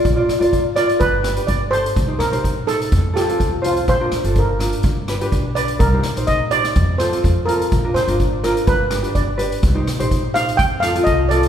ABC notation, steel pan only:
X:1
M:4/4
L:1/8
Q:"Swing 16ths" 1/4=125
K:Bb
V:1 name="Steel pan"
z3 d =B2 d c- | c B2 A2 G2 F | c2 B2 z3 d | B2 e d2 c2 B- |
B c2 B =B2 d2 | z3 f g f e d |]